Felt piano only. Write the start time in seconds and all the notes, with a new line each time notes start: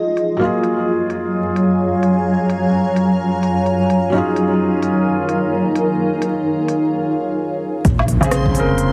Already playing: F3 D#4 G#4
0.37 F#3 A#3
0.42 F4 G#4
4.10 F#3 C#4 D#4
4.16 F4 G#4
8.21 C#3 C4 G#4
8.51 C#3
8.55 C4 A#4